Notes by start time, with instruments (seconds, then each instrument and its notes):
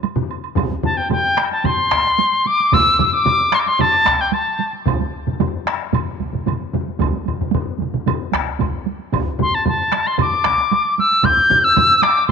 0.03 taiko high, high woodblock
0.16 taiko low-mid, taiko mid
0.31 high woodblock
0.44 high woodblock
0.56 taiko, taiko low-mid, taiko mid, taiko high, high woodblock
0.70 taiko high
0.83 piccolo A5, taiko low-mid, taiko mid, taiko high
0.97 piccolo G5, taiko high
1.10 piccolo G5, taiko low-mid, taiko mid, taiko high, high woodblock
1.24 taiko high
1.37 taiko rim, taiko high
1.51 piccolo A5, taiko high
1.64 piccolo C6, taiko low-mid, taiko mid, taiko high, high woodblock
1.78 taiko high
1.91 taiko rim, taiko
2.06 taiko high
2.18 taiko high, high woodblock
2.32 taiko high
2.46 piccolo D6, taiko high
2.60 taiko high
2.72 piccolo E6, taiko, taiko low-mid, taiko mid, taiko high, high woodblock
2.87 taiko high
2.99 taiko low-mid, taiko mid, taiko high
3.06 piccolo E6
3.13 piccolo D6, taiko high
3.25 taiko low-mid, taiko mid, taiko high, high woodblock
3.40 taiko high
3.52 piccolo C6, taiko rim, taiko high
3.60 piccolo D6
3.66 piccolo C6, taiko high
3.79 piccolo A5, taiko low-mid, taiko mid, taiko high, high woodblock
4.05 taiko rim, taiko, taiko high
4.19 piccolo G5, taiko high
4.32 piccolo A5, taiko high, high woodblock
4.46 taiko high
4.59 taiko high
4.73 taiko high
4.86 taiko, taiko low-mid, taiko mid, taiko high, high woodblock
5.00 taiko high
5.27 taiko low-mid, taiko mid, taiko high
5.40 taiko low-mid, taiko mid, taiko high, high woodblock
5.53 taiko high
5.66 taiko rim, taiko high
5.93 taiko low-mid, taiko mid, taiko high, high woodblock
6.07 taiko high
6.20 taiko, taiko high
6.33 taiko low-mid, taiko mid, taiko high
6.46 taiko low-mid, taiko mid, taiko high, high woodblock
6.60 taiko high
6.73 taiko low-mid, taiko mid, taiko high
6.87 taiko high
6.99 taiko, taiko low-mid, taiko mid, taiko high, high woodblock
7.13 taiko high
7.26 taiko low-mid, taiko mid, taiko high, high woodblock
7.39 taiko low-mid, taiko mid, taiko high
7.52 taiko low-mid, taiko mid, taiko high, high woodblock
7.65 taiko high
7.78 taiko low-mid, taiko mid, taiko high
7.92 taiko low-mid, taiko mid, taiko high
8.06 taiko low-mid, taiko mid, taiko high, high woodblock
8.19 taiko high
8.32 taiko rim, taiko, taiko high
8.46 taiko high
8.59 taiko, taiko low-mid, taiko mid, taiko high, high woodblock
8.73 taiko high
8.86 taiko high
8.99 taiko high
9.12 taiko, taiko low-mid, taiko mid, taiko high, high woodblock
9.39 piccolo C6, taiko low-mid, taiko mid, taiko high
9.53 piccolo A5, taiko high
9.65 piccolo A5, taiko low-mid, taiko mid, taiko high, high woodblock
9.79 taiko high
9.92 taiko rim, taiko high
10.05 piccolo C6, taiko high
10.18 piccolo D6, taiko low-mid, taiko mid, taiko high, high woodblock
10.31 taiko high
10.44 taiko rim, taiko, taiko high
10.58 taiko high
10.71 taiko high, high woodblock
10.85 taiko high
10.98 piccolo E6, taiko high
11.11 taiko high
11.23 piccolo G6, taiko, taiko low-mid, taiko mid, taiko high, high woodblock
11.37 taiko high
11.50 taiko low-mid, taiko mid, taiko high
11.64 piccolo E6, taiko high
11.76 taiko low-mid, taiko mid, taiko high, high woodblock
11.89 taiko high
12.02 piccolo D6, taiko rim, taiko high
12.28 piccolo C6